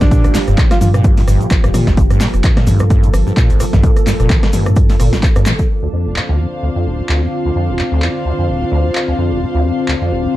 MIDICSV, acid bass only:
0, 0, Header, 1, 2, 480
1, 0, Start_track
1, 0, Key_signature, -1, "minor"
1, 0, Tempo, 465116
1, 117, Time_signature, 4, 2, 24, 8
1, 10697, End_track
2, 0, Start_track
2, 0, Title_t, "Acid bass"
2, 0, Program_c, 0, 38
2, 11, Note_on_c, 0, 43, 80
2, 69, Note_off_c, 0, 43, 0
2, 116, Note_on_c, 0, 46, 88
2, 252, Note_on_c, 0, 31, 77
2, 267, Note_off_c, 0, 46, 0
2, 357, Note_on_c, 0, 55, 107
2, 372, Note_off_c, 0, 31, 0
2, 401, Note_off_c, 0, 55, 0
2, 492, Note_on_c, 0, 43, 104
2, 597, Note_on_c, 0, 46, 106
2, 612, Note_off_c, 0, 43, 0
2, 671, Note_off_c, 0, 46, 0
2, 837, Note_on_c, 0, 43, 78
2, 911, Note_off_c, 0, 43, 0
2, 972, Note_on_c, 0, 46, 77
2, 1076, Note_on_c, 0, 31, 84
2, 1092, Note_off_c, 0, 46, 0
2, 1212, Note_on_c, 0, 55, 110
2, 1227, Note_off_c, 0, 31, 0
2, 1246, Note_off_c, 0, 55, 0
2, 1316, Note_on_c, 0, 43, 105
2, 1452, Note_on_c, 0, 46, 102
2, 1467, Note_off_c, 0, 43, 0
2, 1509, Note_off_c, 0, 46, 0
2, 1692, Note_on_c, 0, 43, 78
2, 1749, Note_off_c, 0, 43, 0
2, 1796, Note_on_c, 0, 46, 79
2, 1931, Note_on_c, 0, 31, 82
2, 1947, Note_off_c, 0, 46, 0
2, 2036, Note_on_c, 0, 55, 114
2, 2052, Note_off_c, 0, 31, 0
2, 2081, Note_off_c, 0, 55, 0
2, 2171, Note_on_c, 0, 43, 103
2, 2276, Note_on_c, 0, 46, 103
2, 2292, Note_off_c, 0, 43, 0
2, 2351, Note_off_c, 0, 46, 0
2, 2516, Note_on_c, 0, 43, 87
2, 2591, Note_off_c, 0, 43, 0
2, 2651, Note_on_c, 0, 46, 80
2, 2756, Note_on_c, 0, 31, 80
2, 2772, Note_off_c, 0, 46, 0
2, 2891, Note_on_c, 0, 55, 104
2, 2907, Note_off_c, 0, 31, 0
2, 2926, Note_off_c, 0, 55, 0
2, 2996, Note_on_c, 0, 43, 108
2, 3131, Note_on_c, 0, 46, 108
2, 3147, Note_off_c, 0, 43, 0
2, 3189, Note_off_c, 0, 46, 0
2, 3372, Note_on_c, 0, 43, 75
2, 3429, Note_off_c, 0, 43, 0
2, 3476, Note_on_c, 0, 46, 88
2, 3612, Note_on_c, 0, 31, 80
2, 3627, Note_off_c, 0, 46, 0
2, 3717, Note_on_c, 0, 55, 102
2, 3732, Note_off_c, 0, 31, 0
2, 3761, Note_off_c, 0, 55, 0
2, 3852, Note_on_c, 0, 43, 102
2, 3957, Note_on_c, 0, 46, 106
2, 3972, Note_off_c, 0, 43, 0
2, 4031, Note_off_c, 0, 46, 0
2, 4197, Note_on_c, 0, 43, 77
2, 4271, Note_off_c, 0, 43, 0
2, 4332, Note_on_c, 0, 46, 78
2, 4437, Note_on_c, 0, 31, 84
2, 4452, Note_off_c, 0, 46, 0
2, 4572, Note_on_c, 0, 55, 104
2, 4588, Note_off_c, 0, 31, 0
2, 4606, Note_off_c, 0, 55, 0
2, 4677, Note_on_c, 0, 43, 100
2, 4812, Note_on_c, 0, 46, 101
2, 4827, Note_off_c, 0, 43, 0
2, 4869, Note_off_c, 0, 46, 0
2, 5052, Note_on_c, 0, 43, 82
2, 5110, Note_off_c, 0, 43, 0
2, 5157, Note_on_c, 0, 46, 82
2, 5292, Note_on_c, 0, 31, 80
2, 5308, Note_off_c, 0, 46, 0
2, 5397, Note_on_c, 0, 55, 102
2, 5412, Note_off_c, 0, 31, 0
2, 5441, Note_off_c, 0, 55, 0
2, 5532, Note_on_c, 0, 43, 105
2, 5637, Note_on_c, 0, 46, 102
2, 5652, Note_off_c, 0, 43, 0
2, 5711, Note_off_c, 0, 46, 0
2, 6012, Note_on_c, 0, 38, 75
2, 6069, Note_off_c, 0, 38, 0
2, 6117, Note_on_c, 0, 41, 73
2, 6252, Note_on_c, 0, 26, 75
2, 6267, Note_off_c, 0, 41, 0
2, 6356, Note_on_c, 0, 50, 96
2, 6372, Note_off_c, 0, 26, 0
2, 6401, Note_off_c, 0, 50, 0
2, 6491, Note_on_c, 0, 38, 95
2, 6597, Note_on_c, 0, 41, 97
2, 6612, Note_off_c, 0, 38, 0
2, 6671, Note_off_c, 0, 41, 0
2, 6837, Note_on_c, 0, 38, 83
2, 6911, Note_off_c, 0, 38, 0
2, 6972, Note_on_c, 0, 41, 78
2, 7077, Note_on_c, 0, 26, 78
2, 7092, Note_off_c, 0, 41, 0
2, 7212, Note_on_c, 0, 50, 96
2, 7227, Note_off_c, 0, 26, 0
2, 7246, Note_off_c, 0, 50, 0
2, 7317, Note_on_c, 0, 38, 99
2, 7452, Note_on_c, 0, 41, 96
2, 7467, Note_off_c, 0, 38, 0
2, 7509, Note_off_c, 0, 41, 0
2, 7692, Note_on_c, 0, 38, 78
2, 7749, Note_off_c, 0, 38, 0
2, 7796, Note_on_c, 0, 41, 85
2, 7931, Note_on_c, 0, 26, 73
2, 7947, Note_off_c, 0, 41, 0
2, 8036, Note_on_c, 0, 50, 99
2, 8051, Note_off_c, 0, 26, 0
2, 8081, Note_off_c, 0, 50, 0
2, 8171, Note_on_c, 0, 38, 99
2, 8276, Note_on_c, 0, 41, 99
2, 8291, Note_off_c, 0, 38, 0
2, 8350, Note_off_c, 0, 41, 0
2, 8516, Note_on_c, 0, 38, 76
2, 8590, Note_off_c, 0, 38, 0
2, 8651, Note_on_c, 0, 41, 75
2, 8756, Note_on_c, 0, 26, 80
2, 8771, Note_off_c, 0, 41, 0
2, 8891, Note_on_c, 0, 50, 102
2, 8907, Note_off_c, 0, 26, 0
2, 8926, Note_off_c, 0, 50, 0
2, 8996, Note_on_c, 0, 38, 99
2, 9131, Note_on_c, 0, 41, 97
2, 9147, Note_off_c, 0, 38, 0
2, 9189, Note_off_c, 0, 41, 0
2, 9371, Note_on_c, 0, 38, 72
2, 9429, Note_off_c, 0, 38, 0
2, 9476, Note_on_c, 0, 41, 76
2, 9612, Note_on_c, 0, 26, 73
2, 9627, Note_off_c, 0, 41, 0
2, 9716, Note_on_c, 0, 50, 101
2, 9732, Note_off_c, 0, 26, 0
2, 9761, Note_off_c, 0, 50, 0
2, 9852, Note_on_c, 0, 38, 103
2, 9957, Note_on_c, 0, 41, 95
2, 9972, Note_off_c, 0, 38, 0
2, 10031, Note_off_c, 0, 41, 0
2, 10197, Note_on_c, 0, 38, 81
2, 10271, Note_off_c, 0, 38, 0
2, 10332, Note_on_c, 0, 41, 77
2, 10437, Note_on_c, 0, 26, 78
2, 10452, Note_off_c, 0, 41, 0
2, 10572, Note_on_c, 0, 50, 102
2, 10587, Note_off_c, 0, 26, 0
2, 10606, Note_off_c, 0, 50, 0
2, 10697, End_track
0, 0, End_of_file